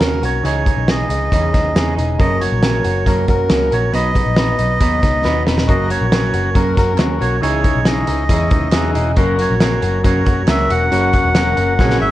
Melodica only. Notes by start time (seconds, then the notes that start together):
Already playing: A#4
0.24 C#5
0.46 C#5
0.90 D#5
2.20 D#5
2.41 C#5
3.07 A#4
3.29 A#4
3.73 C#5
3.95 D#5
4.39 D#5
5.70 D#5
5.91 C#5
6.56 A#4
6.78 A#4
7.21 C#5
7.42 C#5
7.86 D#5
9.41 C#5
10.06 C#5
10.49 E5
10.71 F#5
12.01 E5